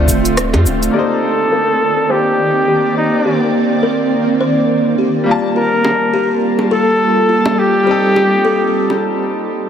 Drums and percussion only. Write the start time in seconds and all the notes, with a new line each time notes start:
0.08 kick, cabasa
0.25 closed hi-hat, cabasa
0.37 cross-stick, closed hi-hat, cabasa
0.54 closed hi-hat, high bongo
0.66 cabasa
0.83 closed hi-hat, cabasa
5.84 high bongo
6.59 high bongo
7.46 high bongo
8.16 high bongo
8.90 high bongo